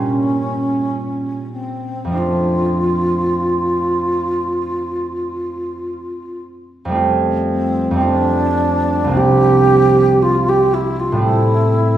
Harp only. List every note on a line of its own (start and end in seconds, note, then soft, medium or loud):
0.00 2.16 A#2 soft
0.00 2.17 G3 soft
0.00 2.18 A#3 soft
0.00 2.19 C#4 soft
0.00 2.14 F4 soft
2.05 5.95 F2 soft
2.05 5.97 F3 soft
2.10 6.00 A3 soft
2.10 6.02 D4 soft
2.15 6.05 F4 soft
6.85 7.90 F2 soft
6.85 7.92 G3 soft
6.90 7.95 A3 soft
6.90 7.96 C4 soft
6.95 7.99 F4 soft
7.91 9.15 F2 soft
7.91 11.13 G3 soft
7.96 9.18 A3 soft
7.96 9.11 C4 soft
8.01 11.26 F4 soft
9.04 11.21 C2 soft
9.04 11.22 F3 soft
9.09 11.24 A#3 soft
9.09 11.17 C4 soft
9.14 11.26 D4 soft
11.12 11.97 A2 medium
11.12 11.97 G3 soft
11.17 11.97 A3 soft
11.17 11.97 C4 soft
11.21 11.97 E4 soft